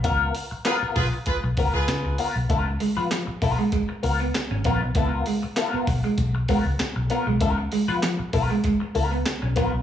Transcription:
0.04 fingered electric bass C#2, clean electric guitar B3 F4 A#4, kick, closed hi-hat
0.35 open hi-hat
0.51 muted clean electric guitar stroke, muted fingered electric bass stroke
0.65 clean electric guitar B3 F4 A#4, horn section F4 G#4 B4, snare, clap, closed hi-hat
0.83 muted fingered electric bass stroke
0.96 fingered electric bass B1, horn section F4 G#4 B4, muted clean electric guitar stroke, kick, open hi-hat
1.13 muted clean electric guitar stroke
1.26 horn section F4 G#4 B4, kick, closed hi-hat
1.44 fingered electric bass B1, muted clean electric guitar stroke
1.57 fingered electric bass C#2, clean electric guitar B3 F4 A#4, kick, open hi-hat
1.74 fingered electric bass C#2, horn section F4 G#4 B4, muted clean electric guitar stroke
1.88 fingered electric bass C#3, snare, clap, closed hi-hat
2.04 fingered electric bass C#2, muted clean electric guitar stroke
2.18 clean electric guitar B3 F4 A#4, open hi-hat
2.36 fingered electric bass B1, muted clean electric guitar stroke
2.49 fingered electric bass C#2, clean electric guitar B3 F4 A#4, kick, closed hi-hat
2.66 muted clean electric guitar stroke
2.80 clean electric guitar G#3, muted clean electric guitar stroke, open hi-hat
2.97 clean electric guitar F3 B3 F4 B4, muted fingered electric bass stroke
3.11 clean electric guitar F3, snare, clap, closed hi-hat
3.27 muted clean electric guitar stroke, muted fingered electric bass stroke
3.42 fingered electric bass B1, clean electric guitar B3 F4 A#4, muted clean electric guitar stroke, kick, open hi-hat
3.58 clean electric guitar G#3, muted clean electric guitar stroke
3.72 clean electric guitar G#3, kick, closed hi-hat
3.89 muted clean electric guitar stroke
4.03 fingered electric bass C#2, clean electric guitar B3 F4 A#4, open hi-hat
4.20 clean electric guitar B3, muted clean electric guitar stroke
4.34 muted clean electric guitar stroke, snare, clap, closed hi-hat
4.51 fingered electric bass G#1, clean electric guitar C#4, muted clean electric guitar stroke
4.64 fingered electric bass A#1, clean electric guitar B3 F4 A#4, kick, closed hi-hat
4.82 fingered electric bass B1, muted clean electric guitar stroke
4.95 fingered electric bass C#2, clean electric guitar A#3 B3 E4 A4, kick, closed hi-hat
5.08 clean electric guitar B3 F4 A#4
5.26 clean electric guitar G#3, open hi-hat
5.43 muted clean electric guitar stroke, muted fingered electric bass stroke
5.57 clean electric guitar A#3 E4 A4, snare, clap, closed hi-hat
5.69 clean electric guitar B3 F4 A#4
5.73 clean electric guitar B3, muted fingered electric bass stroke
5.87 fingered electric bass B1, muted clean electric guitar stroke, kick, open hi-hat
6.04 clean electric guitar G#3, muted clean electric guitar stroke
6.18 fingered electric bass B1, kick, closed hi-hat
6.35 muted clean electric guitar stroke
6.48 clean electric guitar G#3 B3 F4 A#4, kick, open hi-hat
6.65 fingered electric bass C#2, muted clean electric guitar stroke
6.79 muted clean electric guitar stroke, muted fingered electric bass stroke, snare, clap, closed hi-hat
6.96 fingered electric bass B1, muted clean electric guitar stroke
7.10 clean electric guitar B3 F4 A#4, closed hi-hat
7.27 fingered electric bass B1, clean electric guitar G#3, muted clean electric guitar stroke
7.41 fingered electric bass C#2, clean electric guitar B3 F4 A#4, kick, closed hi-hat
7.58 muted clean electric guitar stroke
7.72 clean electric guitar G#3, muted clean electric guitar stroke, open hi-hat
7.88 clean electric guitar F3 B3 F4 B4, muted fingered electric bass stroke
8.03 clean electric guitar F3, snare, clap, closed hi-hat
8.19 muted clean electric guitar stroke, muted fingered electric bass stroke
8.33 fingered electric bass B1, clean electric guitar B3 F4 A#4, muted clean electric guitar stroke, kick, open hi-hat
8.50 clean electric guitar G#3, muted clean electric guitar stroke
8.64 clean electric guitar G#3, kick, closed hi-hat
8.80 muted clean electric guitar stroke
8.95 fingered electric bass C#2, clean electric guitar B3 F4 A#4, open hi-hat
9.11 clean electric guitar B3, muted clean electric guitar stroke
9.26 muted clean electric guitar stroke, snare, clap, closed hi-hat
9.42 fingered electric bass B1, clean electric guitar C#4, muted clean electric guitar stroke
9.56 fingered electric bass A#1, clean electric guitar B3 F4 A#4, kick, closed hi-hat
9.73 fingered electric bass B1, muted clean electric guitar stroke

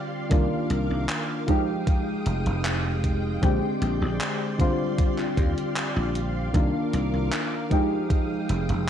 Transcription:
Already playing: synth keys D3 G3 C4 F4, string machine G4 D5 F5 C6
0.29 slap bass C2, synth keys D#3 A#3 D4 F4, string machine A#4 D6, kick, closed hi-hat
0.70 slap bass C2, closed hi-hat
0.90 slap bass C2
1.09 clap, closed hi-hat
1.47 synth keys F3 G#3 D#4 G4, string machine G#3 G5 D#6, kick, closed hi-hat
1.87 kick, closed hi-hat
2.26 slap bass F1, closed hi-hat
2.46 slap bass F1, closed hi-hat
2.65 clap, closed hi-hat
3.04 kick, closed hi-hat
3.41 slap bass A#1, synth keys D3 G#3 C4 G4, string machine D5 C6, kick, closed hi-hat
3.82 slap bass A#1, closed hi-hat
4.02 slap bass A#1
4.21 clap, closed hi-hat
4.58 synth keys D3 G3 C4 F4, string machine G4 F5, kick, closed hi-hat
4.98 kick, closed hi-hat
5.18 clap
5.37 slap bass D#2, kick, closed hi-hat
5.58 closed hi-hat
5.76 clap, closed hi-hat
5.96 slap bass A#1
6.15 closed hi-hat
6.53 slap bass C2, synth keys D#3 A#3 D4 F4, string machine A#4 D6, kick, closed hi-hat
6.93 slap bass C2, closed hi-hat
7.14 slap bass C2
7.32 clap, closed hi-hat
7.70 synth keys F3 G#3 D#4 G4, string machine G#3 G5 D#6, kick, closed hi-hat
8.10 kick, closed hi-hat
8.49 slap bass F1, closed hi-hat
8.69 slap bass F1, closed hi-hat

